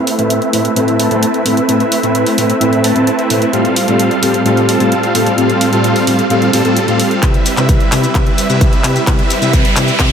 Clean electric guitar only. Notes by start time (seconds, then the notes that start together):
0.18 A2 C4 E4 A4 B4
0.53 A2 C4 E4 A4 B4
0.76 A2 C4 E4 A4 B4
1.10 A2 C4 E4 A4 C5
1.45 A2 C4 E4 A4 B4
1.68 A2 C4 E4 A4 B4
2.03 A2 C4 E4 A4 B4
2.37 A2 C4 E4 A4 B4
2.60 A2 C4 E4 A4 B4
2.95 A2 C4 E4 A4 C5
3.30 A2 C4 E4 A4 B4
3.53 A2 C4 F4 G4 A4
3.87 A2 C4 F4 G4 A4
4.22 A2 C4 F4 G4 A4
4.45 A2 C4 F4 G4 A4
4.80 A2 C4 F4 G4 C5
5.14 A2 C4 F4 G4 A4
5.37 A2 C4 F4 G4 A4
5.72 A2 C4 F4 G4 A4
6.07 A2 C4 F4 G4 A4
6.30 A2 C4 F4 G4 A4
6.53 A2 C4 F4 G4 A4
6.64 A2 C4 F4 G4 A4
6.88 A2 C4 F4 G4 A4
7.22 C3 C4 E4 G4 B4
7.57 C3 C4 E4 G4 B4
7.91 C3 C4 E4 G4 B4
8.14 C3 C4 E4 G4 B4
8.49 C3 C4 E4 G4 B4
8.84 C3 C4 E4 G4 B4
9.07 C3 C4 E4 G4 B4
9.41 C3 C4 E4 G4 B4
9.76 C3 C4 E4 G4 B4
9.99 C3 C4 E4 G4 B4